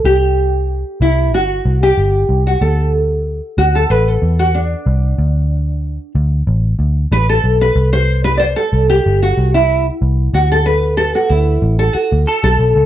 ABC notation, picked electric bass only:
X:1
M:4/4
L:1/16
Q:"Swing 16ths" 1/4=93
K:Dmix
V:1 name="Picked electric bass" clef=bass
C,,4- C,, z C,,2 G,,,2 C,,2 G,,,2 C,,2 | D,,4- D,, z D,,2 A,,,2 E,,4 C,,2 | D,,4- D,, z D,,2 A,,,2 D,,2 A,,,2 B,,,2 | C,,4- C,, z C,,2 G,,,2 C,,4 C,,2 |
D,,4- D,, z D,,2 A,,,2 z D,, z B,,, B,,, ^C,, |]